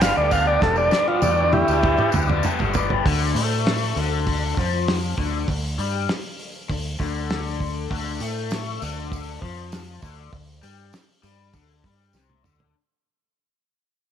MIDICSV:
0, 0, Header, 1, 7, 480
1, 0, Start_track
1, 0, Tempo, 606061
1, 497, Time_signature, 4, 2, 24, 8
1, 11177, End_track
2, 0, Start_track
2, 0, Title_t, "Transistor combo organ"
2, 0, Program_c, 0, 18
2, 18, Note_on_c, 0, 77, 93
2, 129, Note_off_c, 0, 77, 0
2, 136, Note_on_c, 0, 74, 98
2, 248, Note_off_c, 0, 74, 0
2, 254, Note_on_c, 0, 77, 98
2, 367, Note_off_c, 0, 77, 0
2, 374, Note_on_c, 0, 74, 96
2, 487, Note_off_c, 0, 74, 0
2, 498, Note_on_c, 0, 69, 98
2, 609, Note_off_c, 0, 69, 0
2, 614, Note_on_c, 0, 74, 103
2, 725, Note_off_c, 0, 74, 0
2, 735, Note_on_c, 0, 74, 108
2, 848, Note_off_c, 0, 74, 0
2, 853, Note_on_c, 0, 65, 95
2, 967, Note_off_c, 0, 65, 0
2, 969, Note_on_c, 0, 74, 96
2, 1207, Note_off_c, 0, 74, 0
2, 1210, Note_on_c, 0, 64, 96
2, 1216, Note_on_c, 0, 67, 104
2, 1664, Note_off_c, 0, 64, 0
2, 1684, Note_off_c, 0, 67, 0
2, 11177, End_track
3, 0, Start_track
3, 0, Title_t, "Overdriven electric guitar"
3, 0, Program_c, 1, 29
3, 1, Note_on_c, 1, 43, 91
3, 8, Note_on_c, 1, 50, 85
3, 12, Note_on_c, 1, 55, 94
3, 16, Note_on_c, 1, 59, 99
3, 21, Note_on_c, 1, 62, 98
3, 25, Note_on_c, 1, 67, 99
3, 114, Note_off_c, 1, 67, 0
3, 123, Note_on_c, 1, 67, 75
3, 126, Note_off_c, 1, 62, 0
3, 128, Note_off_c, 1, 59, 0
3, 130, Note_on_c, 1, 62, 66
3, 133, Note_off_c, 1, 55, 0
3, 137, Note_on_c, 1, 59, 65
3, 143, Note_on_c, 1, 55, 57
3, 231, Note_off_c, 1, 55, 0
3, 241, Note_off_c, 1, 59, 0
3, 241, Note_on_c, 1, 55, 74
3, 251, Note_on_c, 1, 59, 79
3, 252, Note_off_c, 1, 62, 0
3, 255, Note_on_c, 1, 62, 86
3, 257, Note_off_c, 1, 67, 0
3, 266, Note_on_c, 1, 67, 85
3, 369, Note_off_c, 1, 43, 0
3, 372, Note_off_c, 1, 50, 0
3, 475, Note_on_c, 1, 43, 89
3, 478, Note_off_c, 1, 55, 0
3, 481, Note_off_c, 1, 59, 0
3, 482, Note_on_c, 1, 50, 94
3, 485, Note_off_c, 1, 62, 0
3, 487, Note_on_c, 1, 55, 100
3, 490, Note_off_c, 1, 67, 0
3, 490, Note_on_c, 1, 59, 109
3, 494, Note_on_c, 1, 62, 92
3, 500, Note_on_c, 1, 67, 106
3, 710, Note_off_c, 1, 55, 0
3, 720, Note_on_c, 1, 55, 72
3, 721, Note_off_c, 1, 59, 0
3, 729, Note_off_c, 1, 62, 0
3, 730, Note_on_c, 1, 59, 72
3, 735, Note_off_c, 1, 67, 0
3, 739, Note_on_c, 1, 62, 80
3, 745, Note_on_c, 1, 67, 84
3, 948, Note_off_c, 1, 43, 0
3, 957, Note_off_c, 1, 50, 0
3, 957, Note_on_c, 1, 43, 94
3, 958, Note_off_c, 1, 55, 0
3, 961, Note_off_c, 1, 59, 0
3, 966, Note_off_c, 1, 62, 0
3, 967, Note_on_c, 1, 50, 96
3, 967, Note_on_c, 1, 55, 104
3, 971, Note_on_c, 1, 59, 88
3, 974, Note_off_c, 1, 67, 0
3, 975, Note_on_c, 1, 62, 91
3, 984, Note_on_c, 1, 67, 103
3, 1073, Note_off_c, 1, 67, 0
3, 1080, Note_off_c, 1, 62, 0
3, 1082, Note_on_c, 1, 67, 72
3, 1089, Note_off_c, 1, 59, 0
3, 1090, Note_on_c, 1, 62, 68
3, 1094, Note_off_c, 1, 55, 0
3, 1098, Note_on_c, 1, 59, 62
3, 1103, Note_on_c, 1, 55, 64
3, 1195, Note_off_c, 1, 55, 0
3, 1198, Note_off_c, 1, 62, 0
3, 1200, Note_off_c, 1, 59, 0
3, 1203, Note_off_c, 1, 67, 0
3, 1321, Note_on_c, 1, 67, 67
3, 1329, Note_off_c, 1, 43, 0
3, 1329, Note_on_c, 1, 62, 61
3, 1334, Note_off_c, 1, 50, 0
3, 1337, Note_on_c, 1, 59, 62
3, 1343, Note_on_c, 1, 55, 56
3, 1552, Note_off_c, 1, 67, 0
3, 1562, Note_on_c, 1, 67, 60
3, 1563, Note_off_c, 1, 62, 0
3, 1569, Note_off_c, 1, 59, 0
3, 1573, Note_on_c, 1, 62, 61
3, 1574, Note_off_c, 1, 55, 0
3, 1578, Note_on_c, 1, 59, 61
3, 1583, Note_on_c, 1, 55, 54
3, 1674, Note_off_c, 1, 55, 0
3, 1682, Note_off_c, 1, 59, 0
3, 1683, Note_on_c, 1, 55, 70
3, 1688, Note_off_c, 1, 62, 0
3, 1692, Note_on_c, 1, 59, 82
3, 1697, Note_off_c, 1, 67, 0
3, 1697, Note_on_c, 1, 62, 70
3, 1706, Note_on_c, 1, 67, 84
3, 1790, Note_off_c, 1, 67, 0
3, 1799, Note_on_c, 1, 67, 85
3, 1801, Note_off_c, 1, 62, 0
3, 1808, Note_off_c, 1, 59, 0
3, 1811, Note_on_c, 1, 62, 72
3, 1815, Note_off_c, 1, 55, 0
3, 1817, Note_on_c, 1, 59, 70
3, 1825, Note_on_c, 1, 55, 67
3, 1923, Note_on_c, 1, 43, 94
3, 1927, Note_off_c, 1, 55, 0
3, 1930, Note_off_c, 1, 59, 0
3, 1932, Note_on_c, 1, 50, 92
3, 1933, Note_off_c, 1, 62, 0
3, 1937, Note_off_c, 1, 67, 0
3, 1937, Note_on_c, 1, 55, 91
3, 1940, Note_on_c, 1, 59, 93
3, 1943, Note_on_c, 1, 62, 104
3, 1947, Note_on_c, 1, 67, 97
3, 2045, Note_off_c, 1, 67, 0
3, 2053, Note_off_c, 1, 62, 0
3, 2055, Note_on_c, 1, 67, 69
3, 2063, Note_off_c, 1, 59, 0
3, 2063, Note_on_c, 1, 62, 70
3, 2067, Note_off_c, 1, 55, 0
3, 2073, Note_on_c, 1, 59, 58
3, 2076, Note_on_c, 1, 55, 59
3, 2160, Note_off_c, 1, 55, 0
3, 2170, Note_off_c, 1, 59, 0
3, 2170, Note_on_c, 1, 55, 72
3, 2178, Note_off_c, 1, 62, 0
3, 2180, Note_on_c, 1, 59, 83
3, 2182, Note_off_c, 1, 67, 0
3, 2187, Note_on_c, 1, 62, 84
3, 2192, Note_on_c, 1, 67, 84
3, 2293, Note_off_c, 1, 43, 0
3, 2297, Note_off_c, 1, 50, 0
3, 2402, Note_off_c, 1, 55, 0
3, 2407, Note_off_c, 1, 59, 0
3, 2411, Note_off_c, 1, 62, 0
3, 2413, Note_off_c, 1, 67, 0
3, 2416, Note_on_c, 1, 50, 107
3, 2652, Note_off_c, 1, 50, 0
3, 2660, Note_on_c, 1, 57, 92
3, 3135, Note_off_c, 1, 57, 0
3, 3151, Note_on_c, 1, 50, 100
3, 3621, Note_off_c, 1, 50, 0
3, 3632, Note_on_c, 1, 53, 96
3, 4096, Note_off_c, 1, 53, 0
3, 4100, Note_on_c, 1, 50, 101
3, 4335, Note_off_c, 1, 50, 0
3, 4347, Note_on_c, 1, 50, 74
3, 4538, Note_off_c, 1, 50, 0
3, 4586, Note_on_c, 1, 55, 99
3, 4819, Note_off_c, 1, 55, 0
3, 5303, Note_on_c, 1, 50, 81
3, 5496, Note_off_c, 1, 50, 0
3, 5543, Note_on_c, 1, 50, 102
3, 6254, Note_off_c, 1, 50, 0
3, 6264, Note_on_c, 1, 50, 105
3, 6497, Note_off_c, 1, 50, 0
3, 6506, Note_on_c, 1, 57, 95
3, 6977, Note_off_c, 1, 57, 0
3, 6991, Note_on_c, 1, 50, 101
3, 7459, Note_off_c, 1, 50, 0
3, 7468, Note_on_c, 1, 53, 92
3, 7937, Note_off_c, 1, 53, 0
3, 7942, Note_on_c, 1, 50, 109
3, 8172, Note_off_c, 1, 50, 0
3, 8182, Note_on_c, 1, 50, 72
3, 8373, Note_off_c, 1, 50, 0
3, 8419, Note_on_c, 1, 55, 92
3, 8652, Note_off_c, 1, 55, 0
3, 8896, Note_on_c, 1, 55, 99
3, 9130, Note_off_c, 1, 55, 0
3, 9135, Note_on_c, 1, 50, 108
3, 9369, Note_off_c, 1, 50, 0
3, 9381, Note_on_c, 1, 55, 101
3, 9611, Note_off_c, 1, 55, 0
3, 9614, Note_on_c, 1, 48, 109
3, 9848, Note_off_c, 1, 48, 0
3, 9855, Note_on_c, 1, 50, 103
3, 10088, Note_off_c, 1, 50, 0
3, 11177, End_track
4, 0, Start_track
4, 0, Title_t, "Tanpura"
4, 0, Program_c, 2, 104
4, 0, Note_on_c, 2, 38, 62
4, 0, Note_on_c, 2, 45, 62
4, 0, Note_on_c, 2, 50, 66
4, 318, Note_off_c, 2, 38, 0
4, 321, Note_on_c, 2, 38, 68
4, 799, Note_off_c, 2, 45, 0
4, 802, Note_on_c, 2, 45, 59
4, 1291, Note_off_c, 2, 50, 0
4, 1291, Note_on_c, 2, 50, 62
4, 1773, Note_off_c, 2, 50, 0
4, 1773, Note_on_c, 2, 50, 65
4, 2274, Note_off_c, 2, 38, 0
4, 2277, Note_on_c, 2, 38, 63
4, 6465, Note_off_c, 2, 45, 0
4, 7436, Note_off_c, 2, 50, 0
4, 7940, Note_off_c, 2, 38, 0
4, 11177, End_track
5, 0, Start_track
5, 0, Title_t, "Fingered electric bass"
5, 0, Program_c, 3, 33
5, 0, Note_on_c, 3, 31, 82
5, 89, Note_off_c, 3, 31, 0
5, 134, Note_on_c, 3, 38, 96
5, 450, Note_off_c, 3, 38, 0
5, 492, Note_on_c, 3, 28, 109
5, 704, Note_off_c, 3, 28, 0
5, 967, Note_on_c, 3, 40, 101
5, 1287, Note_off_c, 3, 40, 0
5, 1332, Note_on_c, 3, 38, 94
5, 1545, Note_off_c, 3, 38, 0
5, 1693, Note_on_c, 3, 38, 87
5, 1906, Note_off_c, 3, 38, 0
5, 2058, Note_on_c, 3, 31, 81
5, 2374, Note_off_c, 3, 31, 0
5, 2419, Note_on_c, 3, 38, 91
5, 2644, Note_off_c, 3, 38, 0
5, 2650, Note_on_c, 3, 45, 99
5, 3106, Note_off_c, 3, 45, 0
5, 3137, Note_on_c, 3, 38, 92
5, 3589, Note_off_c, 3, 38, 0
5, 3622, Note_on_c, 3, 41, 92
5, 4072, Note_off_c, 3, 41, 0
5, 4100, Note_on_c, 3, 38, 100
5, 4326, Note_off_c, 3, 38, 0
5, 4343, Note_on_c, 3, 38, 78
5, 4567, Note_off_c, 3, 38, 0
5, 4579, Note_on_c, 3, 43, 92
5, 4805, Note_off_c, 3, 43, 0
5, 5306, Note_on_c, 3, 38, 79
5, 5529, Note_off_c, 3, 38, 0
5, 5541, Note_on_c, 3, 38, 97
5, 6231, Note_off_c, 3, 38, 0
5, 6265, Note_on_c, 3, 38, 94
5, 6488, Note_off_c, 3, 38, 0
5, 6499, Note_on_c, 3, 45, 95
5, 6949, Note_off_c, 3, 45, 0
5, 6985, Note_on_c, 3, 38, 104
5, 7432, Note_off_c, 3, 38, 0
5, 7461, Note_on_c, 3, 41, 85
5, 7909, Note_off_c, 3, 41, 0
5, 7939, Note_on_c, 3, 38, 107
5, 8163, Note_off_c, 3, 38, 0
5, 8178, Note_on_c, 3, 38, 82
5, 8402, Note_off_c, 3, 38, 0
5, 8420, Note_on_c, 3, 43, 90
5, 8643, Note_off_c, 3, 43, 0
5, 8895, Note_on_c, 3, 43, 96
5, 9120, Note_off_c, 3, 43, 0
5, 9139, Note_on_c, 3, 38, 92
5, 9362, Note_off_c, 3, 38, 0
5, 9378, Note_on_c, 3, 43, 93
5, 9601, Note_off_c, 3, 43, 0
5, 9612, Note_on_c, 3, 36, 97
5, 9837, Note_off_c, 3, 36, 0
5, 9854, Note_on_c, 3, 38, 104
5, 10078, Note_off_c, 3, 38, 0
5, 11177, End_track
6, 0, Start_track
6, 0, Title_t, "Muted overdriven electric guitar strokes"
6, 1205, Note_on_c, 9, 29, 48
6, 1284, Note_off_c, 9, 29, 0
6, 11177, End_track
7, 0, Start_track
7, 0, Title_t, "Drums"
7, 10, Note_on_c, 9, 46, 73
7, 13, Note_on_c, 9, 54, 91
7, 14, Note_on_c, 9, 38, 115
7, 89, Note_off_c, 9, 46, 0
7, 93, Note_off_c, 9, 38, 0
7, 93, Note_off_c, 9, 54, 0
7, 247, Note_on_c, 9, 54, 71
7, 248, Note_on_c, 9, 46, 50
7, 252, Note_on_c, 9, 36, 73
7, 326, Note_off_c, 9, 54, 0
7, 327, Note_off_c, 9, 46, 0
7, 331, Note_off_c, 9, 36, 0
7, 485, Note_on_c, 9, 54, 27
7, 491, Note_on_c, 9, 38, 62
7, 492, Note_on_c, 9, 36, 115
7, 564, Note_off_c, 9, 54, 0
7, 570, Note_off_c, 9, 38, 0
7, 571, Note_off_c, 9, 36, 0
7, 599, Note_on_c, 9, 54, 27
7, 679, Note_off_c, 9, 54, 0
7, 722, Note_on_c, 9, 54, 62
7, 730, Note_on_c, 9, 38, 74
7, 802, Note_off_c, 9, 54, 0
7, 810, Note_off_c, 9, 38, 0
7, 965, Note_on_c, 9, 54, 88
7, 968, Note_on_c, 9, 48, 69
7, 1044, Note_off_c, 9, 54, 0
7, 1048, Note_off_c, 9, 48, 0
7, 1087, Note_on_c, 9, 54, 27
7, 1166, Note_off_c, 9, 54, 0
7, 1206, Note_on_c, 9, 54, 27
7, 1211, Note_on_c, 9, 48, 78
7, 1285, Note_off_c, 9, 54, 0
7, 1291, Note_off_c, 9, 48, 0
7, 1331, Note_on_c, 9, 54, 71
7, 1410, Note_off_c, 9, 54, 0
7, 1446, Note_on_c, 9, 54, 28
7, 1450, Note_on_c, 9, 47, 76
7, 1454, Note_on_c, 9, 36, 102
7, 1525, Note_off_c, 9, 54, 0
7, 1529, Note_off_c, 9, 47, 0
7, 1533, Note_off_c, 9, 36, 0
7, 1563, Note_on_c, 9, 54, 27
7, 1573, Note_on_c, 9, 47, 73
7, 1642, Note_off_c, 9, 54, 0
7, 1652, Note_off_c, 9, 47, 0
7, 1679, Note_on_c, 9, 54, 72
7, 1694, Note_on_c, 9, 45, 87
7, 1758, Note_off_c, 9, 54, 0
7, 1774, Note_off_c, 9, 45, 0
7, 1801, Note_on_c, 9, 54, 25
7, 1818, Note_on_c, 9, 45, 81
7, 1880, Note_off_c, 9, 54, 0
7, 1897, Note_off_c, 9, 45, 0
7, 1925, Note_on_c, 9, 54, 84
7, 1937, Note_on_c, 9, 45, 84
7, 2004, Note_off_c, 9, 54, 0
7, 2017, Note_off_c, 9, 45, 0
7, 2048, Note_on_c, 9, 54, 27
7, 2059, Note_on_c, 9, 43, 79
7, 2127, Note_off_c, 9, 54, 0
7, 2138, Note_off_c, 9, 43, 0
7, 2166, Note_on_c, 9, 54, 80
7, 2178, Note_on_c, 9, 43, 97
7, 2245, Note_off_c, 9, 54, 0
7, 2257, Note_off_c, 9, 43, 0
7, 2299, Note_on_c, 9, 43, 87
7, 2378, Note_off_c, 9, 43, 0
7, 2421, Note_on_c, 9, 36, 101
7, 2422, Note_on_c, 9, 46, 86
7, 2500, Note_off_c, 9, 36, 0
7, 2501, Note_off_c, 9, 46, 0
7, 2662, Note_on_c, 9, 46, 68
7, 2741, Note_off_c, 9, 46, 0
7, 2902, Note_on_c, 9, 46, 85
7, 2906, Note_on_c, 9, 38, 106
7, 2981, Note_off_c, 9, 46, 0
7, 2985, Note_off_c, 9, 38, 0
7, 3145, Note_on_c, 9, 46, 61
7, 3224, Note_off_c, 9, 46, 0
7, 3380, Note_on_c, 9, 46, 77
7, 3381, Note_on_c, 9, 36, 100
7, 3459, Note_off_c, 9, 46, 0
7, 3460, Note_off_c, 9, 36, 0
7, 3623, Note_on_c, 9, 36, 91
7, 3626, Note_on_c, 9, 46, 57
7, 3630, Note_on_c, 9, 38, 35
7, 3702, Note_off_c, 9, 36, 0
7, 3705, Note_off_c, 9, 46, 0
7, 3709, Note_off_c, 9, 38, 0
7, 3864, Note_on_c, 9, 46, 80
7, 3868, Note_on_c, 9, 38, 109
7, 3943, Note_off_c, 9, 46, 0
7, 3947, Note_off_c, 9, 38, 0
7, 4098, Note_on_c, 9, 46, 58
7, 4100, Note_on_c, 9, 36, 78
7, 4177, Note_off_c, 9, 46, 0
7, 4179, Note_off_c, 9, 36, 0
7, 4338, Note_on_c, 9, 46, 80
7, 4340, Note_on_c, 9, 36, 108
7, 4418, Note_off_c, 9, 46, 0
7, 4419, Note_off_c, 9, 36, 0
7, 4583, Note_on_c, 9, 46, 60
7, 4662, Note_off_c, 9, 46, 0
7, 4822, Note_on_c, 9, 46, 75
7, 4826, Note_on_c, 9, 38, 113
7, 4901, Note_off_c, 9, 46, 0
7, 4905, Note_off_c, 9, 38, 0
7, 5064, Note_on_c, 9, 46, 57
7, 5143, Note_off_c, 9, 46, 0
7, 5302, Note_on_c, 9, 46, 77
7, 5303, Note_on_c, 9, 36, 104
7, 5381, Note_off_c, 9, 46, 0
7, 5382, Note_off_c, 9, 36, 0
7, 5542, Note_on_c, 9, 36, 86
7, 5545, Note_on_c, 9, 46, 61
7, 5549, Note_on_c, 9, 38, 36
7, 5621, Note_off_c, 9, 36, 0
7, 5624, Note_off_c, 9, 46, 0
7, 5628, Note_off_c, 9, 38, 0
7, 5783, Note_on_c, 9, 46, 79
7, 5787, Note_on_c, 9, 38, 104
7, 5862, Note_off_c, 9, 46, 0
7, 5866, Note_off_c, 9, 38, 0
7, 6023, Note_on_c, 9, 36, 78
7, 6025, Note_on_c, 9, 46, 59
7, 6102, Note_off_c, 9, 36, 0
7, 6104, Note_off_c, 9, 46, 0
7, 6263, Note_on_c, 9, 36, 113
7, 6264, Note_on_c, 9, 46, 84
7, 6342, Note_off_c, 9, 36, 0
7, 6344, Note_off_c, 9, 46, 0
7, 6375, Note_on_c, 9, 54, 30
7, 6454, Note_off_c, 9, 54, 0
7, 6496, Note_on_c, 9, 54, 71
7, 6502, Note_on_c, 9, 46, 66
7, 6575, Note_off_c, 9, 54, 0
7, 6581, Note_off_c, 9, 46, 0
7, 6738, Note_on_c, 9, 54, 97
7, 6743, Note_on_c, 9, 46, 81
7, 6747, Note_on_c, 9, 38, 109
7, 6817, Note_off_c, 9, 54, 0
7, 6823, Note_off_c, 9, 46, 0
7, 6827, Note_off_c, 9, 38, 0
7, 6859, Note_on_c, 9, 54, 30
7, 6939, Note_off_c, 9, 54, 0
7, 6984, Note_on_c, 9, 54, 77
7, 6987, Note_on_c, 9, 46, 63
7, 7064, Note_off_c, 9, 54, 0
7, 7066, Note_off_c, 9, 46, 0
7, 7110, Note_on_c, 9, 54, 29
7, 7189, Note_off_c, 9, 54, 0
7, 7221, Note_on_c, 9, 36, 114
7, 7222, Note_on_c, 9, 46, 81
7, 7231, Note_on_c, 9, 54, 83
7, 7301, Note_off_c, 9, 36, 0
7, 7301, Note_off_c, 9, 46, 0
7, 7310, Note_off_c, 9, 54, 0
7, 7347, Note_on_c, 9, 54, 29
7, 7427, Note_off_c, 9, 54, 0
7, 7461, Note_on_c, 9, 36, 94
7, 7463, Note_on_c, 9, 46, 70
7, 7540, Note_off_c, 9, 36, 0
7, 7543, Note_off_c, 9, 46, 0
7, 7700, Note_on_c, 9, 54, 102
7, 7702, Note_on_c, 9, 46, 78
7, 7706, Note_on_c, 9, 38, 104
7, 7779, Note_off_c, 9, 54, 0
7, 7781, Note_off_c, 9, 46, 0
7, 7785, Note_off_c, 9, 38, 0
7, 7826, Note_on_c, 9, 54, 27
7, 7905, Note_off_c, 9, 54, 0
7, 7937, Note_on_c, 9, 54, 76
7, 7941, Note_on_c, 9, 36, 77
7, 7946, Note_on_c, 9, 46, 59
7, 8016, Note_off_c, 9, 54, 0
7, 8020, Note_off_c, 9, 36, 0
7, 8025, Note_off_c, 9, 46, 0
7, 8178, Note_on_c, 9, 54, 30
7, 8179, Note_on_c, 9, 36, 113
7, 8180, Note_on_c, 9, 46, 76
7, 8257, Note_off_c, 9, 54, 0
7, 8258, Note_off_c, 9, 36, 0
7, 8259, Note_off_c, 9, 46, 0
7, 8298, Note_on_c, 9, 54, 29
7, 8378, Note_off_c, 9, 54, 0
7, 8419, Note_on_c, 9, 54, 72
7, 8421, Note_on_c, 9, 46, 62
7, 8498, Note_off_c, 9, 54, 0
7, 8500, Note_off_c, 9, 46, 0
7, 8542, Note_on_c, 9, 54, 34
7, 8621, Note_off_c, 9, 54, 0
7, 8654, Note_on_c, 9, 54, 94
7, 8659, Note_on_c, 9, 46, 80
7, 8663, Note_on_c, 9, 38, 113
7, 8733, Note_off_c, 9, 54, 0
7, 8738, Note_off_c, 9, 46, 0
7, 8742, Note_off_c, 9, 38, 0
7, 8895, Note_on_c, 9, 54, 77
7, 8899, Note_on_c, 9, 46, 59
7, 8974, Note_off_c, 9, 54, 0
7, 8979, Note_off_c, 9, 46, 0
7, 9135, Note_on_c, 9, 54, 84
7, 9136, Note_on_c, 9, 46, 70
7, 9137, Note_on_c, 9, 36, 101
7, 9214, Note_off_c, 9, 54, 0
7, 9215, Note_off_c, 9, 46, 0
7, 9216, Note_off_c, 9, 36, 0
7, 9374, Note_on_c, 9, 54, 30
7, 9378, Note_on_c, 9, 36, 94
7, 9379, Note_on_c, 9, 46, 57
7, 9383, Note_on_c, 9, 38, 35
7, 9453, Note_off_c, 9, 54, 0
7, 9457, Note_off_c, 9, 36, 0
7, 9458, Note_off_c, 9, 46, 0
7, 9462, Note_off_c, 9, 38, 0
7, 9496, Note_on_c, 9, 54, 30
7, 9575, Note_off_c, 9, 54, 0
7, 9609, Note_on_c, 9, 54, 103
7, 9622, Note_on_c, 9, 38, 59
7, 9688, Note_off_c, 9, 54, 0
7, 9701, Note_off_c, 9, 38, 0
7, 9739, Note_on_c, 9, 48, 69
7, 9818, Note_off_c, 9, 48, 0
7, 9854, Note_on_c, 9, 45, 89
7, 9862, Note_on_c, 9, 54, 82
7, 9933, Note_off_c, 9, 45, 0
7, 9941, Note_off_c, 9, 54, 0
7, 9980, Note_on_c, 9, 43, 92
7, 10059, Note_off_c, 9, 43, 0
7, 11177, End_track
0, 0, End_of_file